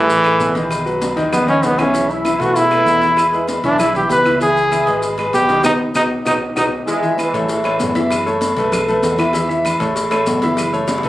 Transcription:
Already playing: A2 E3 A3 G#4 A4
0.09 cowbell, high conga, low agogo, maracas
0.23 A3 G#4 A4, cowbell, high conga, low agogo, claves, maracas
0.40 B1, cowbell, high conga, low timbale, maracas
0.54 D#3 D#4 D#5, cowbell, high conga, low agogo, maracas
0.71 cowbell, high conga, low agogo, claves, maracas
0.85 F#3 F#4 B4, high conga, maracas
1.02 cowbell, high bongo, high conga, low timbale, low agogo, maracas
1.16 D#2 D#3 D#4 D#5, cowbell, low agogo, maracas
1.33 B3, cowbell, high bongo, high conga, low conga, low agogo, claves, maracas
1.47 D#3 C#4 D#4 D#5, low bongo, high conga, low conga, maracas
1.63 B1 B3, cowbell, low bongo, high conga, low timbale, low agogo, maracas
1.77 E3 C#4 E4 E5, cowbell, low bongo, high conga, low agogo, claves, maracas
1.93 E3 E4 E5, cowbell, high conga, low agogo, maracas
2.10 E4, high conga, maracas
2.24 E3 E4 E5, cowbell, high conga, low timbale, low agogo, claves, maracas
2.39 B2 A3 F#4 A4 B4, cowbell, high conga, maracas
2.56 E4, cowbell, high conga, low agogo, maracas
2.71 A3 A4 B4, cowbell, high conga, low agogo, claves, maracas
2.86 E2, cowbell, high conga, low timbale, maracas
3.01 E3 E4 E5, cowbell, low agogo, maracas
3.17 cowbell, high conga, low agogo, claves, maracas
3.32 G#3 G#4 B4, high conga, maracas
3.48 cowbell, high conga, low timbale, low agogo, maracas
3.63 B1 E3 D4 E4 E5, cowbell, low agogo, maracas
3.78 E4, cowbell, high conga, low conga, low agogo, claves, maracas
3.94 E3 E4 G4 E5, high conga, low conga, maracas
4.09 C#2 B4, cowbell, high conga, low timbale, low agogo, maracas
4.25 E3 E4 E5, cowbell, high conga, low agogo, claves, maracas
4.39 E3 E4 G#4 E5, cowbell, high conga, low agogo, maracas
4.56 high conga, maracas
4.71 E3 E4 E5, cowbell, high conga, low timbale, low agogo, claves, maracas
4.87 G#1 G#3 G#4 B4, cowbell, maracas
5.02 cowbell, high conga, low agogo, maracas
5.18 G#3 G#4 B4, cowbell, high conga, low agogo, claves, maracas
5.33 B1 G4, cowbell, high conga, low timbale, maracas
5.48 D#3 D#4 D#5, cowbell, low agogo, maracas
5.64 B1 B3 D#4 F#4, cowbell, high conga, high timbale, claves, maracas
5.95 B1 B3 D#4 F#4, cowbell, high conga, high timbale, claves, maracas
6.25 B1 B3 D#4 F#4, cowbell, high conga, high timbale, claves, maracas
6.56 B1 B3 D#4 F#4, cowbell, high conga, high timbale, claves, maracas
6.86 E3 G#3 E4 E5, cowbell, high conga, low agogo, maracas
7.02 E3 E4 E5, high conga, maracas
7.17 E3, cowbell, high conga, low timbale, low agogo, claves, maracas
7.33 A1 A3 A4 C#5, cowbell, high conga, maracas
7.41 F#3
7.48 E3, cowbell, high conga, low agogo, maracas
7.64 A3 A4 C#5, cowbell, high conga, low agogo, claves, maracas
7.80 F#1, cowbell, high conga, low timbale, maracas
7.95 E3 E4 E5, cowbell, high conga, low agogo, maracas
8.10 cowbell, low agogo, claves, maracas
8.26 A3 A4 C#5, high conga, maracas
8.41 cowbell, high conga, low timbale, low agogo, maracas
8.57 B1 A3 A4 B4, cowbell, low agogo, maracas
8.72 cowbell, high conga, low conga, low agogo, claves, maracas
8.88 A3 A4 B4, high conga, maracas
9.03 E2, cowbell, high conga, low timbale, low agogo, maracas
9.18 E3 E4 E5, cowbell, high conga, low agogo, claves, maracas
9.33 E3 E4 E5, cowbell, high conga, low agogo, maracas
9.48 E3 E4 E5, high conga, maracas
9.65 cowbell, high conga, low timbale, low agogo, claves, maracas
9.79 A1 A3 A4 C#5, cowbell, high conga, maracas
9.96 cowbell, high conga, low agogo, maracas
10.11 A3 A4 C#5, cowbell, high conga, low agogo, claves, maracas
10.26 F#1, cowbell, high conga, low timbale, maracas
10.42 E3 E4 E5, cowbell, high conga, low agogo, maracas
10.57 cowbell, high conga, low agogo, claves, maracas
10.73 A3 A4 C#5, high conga, maracas
10.88 cowbell, high bongo, high conga, low timbale, low agogo, maracas
10.98 high bongo
11.03 B1 A3 A4 B4, cowbell, high conga, low agogo, maracas

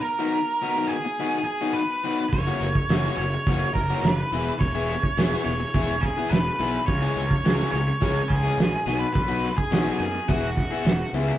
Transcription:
0.01 A#4
0.19 D#3 B3 D#4 F#4
0.62 D#3 B3 D#4 F#4
0.77 D#3 B3 D#4 F#4
0.87 G#4
1.05 muted overdriven electric guitar stroke
1.20 D#3 B3 D#4 F#4
1.44 G#4
1.61 D#3 B3 D#4 F#4
1.73 B4
2.04 D#3 B3 D#4 F#4
2.30 F#1 C#5, kick, open hi-hat
2.47 E3 A#3 C#4 F#4
2.61 F#1, open hi-hat
2.75 kick
2.89 F#1 E3 A#3 C#4 F#4, snare, open hi-hat
3.05 E3 A#3 C#4 F#4
3.17 F#1 C#5, open hi-hat
3.34 muted overdriven electric guitar stroke
3.47 F#1 E3 A#3 C#4 F#4, kick, open hi-hat
3.74 F#1 A#4, kick, open hi-hat
3.90 E3 A#3 C#4 F#4
4.01 F#1 A#4, snare, open hi-hat
4.12 B4
4.32 E1 E3 B3 E4 G#4, open hi-hat
4.59 E1 C#5, kick, open hi-hat
4.75 E3 B3 E4 G#4
4.89 open hi-hat
5.03 kick
5.17 E1 E3 B3 E4 G#4, snare, open hi-hat
5.31 E3 B3 E4 G#4, snare
5.45 E1 C#5, open hi-hat
5.59 muted overdriven electric guitar stroke
5.74 E1 E3 B3 E4 G#4, kick, open hi-hat
6.01 G#4, kick, open hi-hat
6.17 E3 B3 E4 G#4
6.29 E1 B4, snare, open hi-hat
6.59 B1 E3 B3 E4 G#4, open hi-hat
6.86 C#2 C#5, kick, open hi-hat
7.02 E3 G#3 C#4 G#4
7.16 C#2, open hi-hat
7.31 kick
7.44 C#2 E3 G#3 C#4 G#4, snare, open hi-hat
7.59 E3 G#3 C#4 G#4, snare
7.72 C#2 C#5, open hi-hat
7.88 muted overdriven electric guitar stroke
8.01 C#2 E3 G#3 C#4 G#4, kick, open hi-hat
8.28 C#2 G#4, kick, open hi-hat
8.44 E3 G#3 C#4 G#4
8.58 A#1, snare, open hi-hat
8.86 B1 F#3 B3 D#4 F#4, open hi-hat
8.99 B4
9.14 B1 B4, kick, open hi-hat
9.28 F#3 B3 D#4 F#4
9.44 open hi-hat
9.57 G#4, kick
9.71 B1 F#3 B3 D#4 F#4, snare, open hi-hat
9.85 F#3 B3 D#4 F#4
9.99 F#2 G#4, open hi-hat
10.15 muted overdriven electric guitar stroke
10.28 E1 B3 E4 F#4 G#4, kick, open hi-hat
10.57 kick, open hi-hat
10.71 B3 E4 G#4
10.85 E1, snare, open hi-hat
11.13 C#2 B3 E4 G#4, open hi-hat

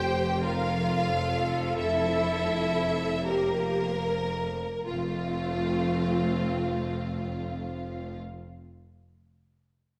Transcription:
Already playing: F1 F2 G4 C5 G5
0.42 F4 A#4 F5
1.08 A4
1.77 E4 E5
3.26 A#3 G4 A#4
4.85 F1 F2 A3 C4 F4 F5

